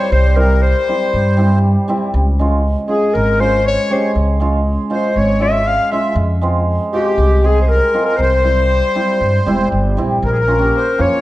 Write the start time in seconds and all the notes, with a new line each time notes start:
Already playing: G3 C5 C#5
0.12 C2 C5
0.36 G3 C4 E4 A#4
0.62 C5
0.88 G3 C4 E4
1.14 G2
1.37 G3 C4 E4
1.88 G3 C4 E4
2.14 C#2
2.39 G#3 C#4 F4
2.88 G#3 C#4 F4 G#4
3.13 G#1 A#4
3.39 G#3 C#4 F4 C5
3.65 C#5
3.90 G#3 C#4 G4 C5
4.15 C#2
4.40 G#3 C#4 F4
4.90 G#3 C#4 F4 C5
4.95 C5
5.16 G#1 C#5
5.40 G#3 C#4 F4 E5
5.64 F5
5.91 G#3 C#4 F4 E5
6.15 F2
6.41 G#3 C4 F4
6.93 G#3 C4 F4 G4
7.18 C2
7.43 G#3 C4 G#4
7.61 C5
7.69 A#4
7.94 G#3 C4 F4
8.05 A#4
8.17 C2 C5
8.21 C5
8.44 G3 C4 E4
8.95 G3 C4 E4
9.21 G2
9.46 E1 G3 C4 E4
9.72 G1
9.97 A#1 G3 C4 E4
10.22 A#1 A#4
10.32 G#4
10.39 A#4
10.47 C#4 F4
10.59 A#3 C#4 G4
10.76 C5
10.98 F2 A#3 C#4 F4 C#5